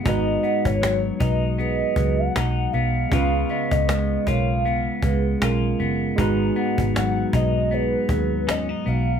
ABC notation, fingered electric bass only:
X:1
M:4/4
L:1/16
Q:"Swing 16ths" 1/4=78
K:G#dor
V:1 name="Fingered electric bass" clef=bass
G,,,2 z G,,,3 B,,,4 C,,2 B,,,2 B,,,2 | C,,2 z C,,3 B,,,4 C,,2 B,,,2 F,,,2 | G,,,2 z G,,,3 B,,,4 D,,4 B,,,2 |]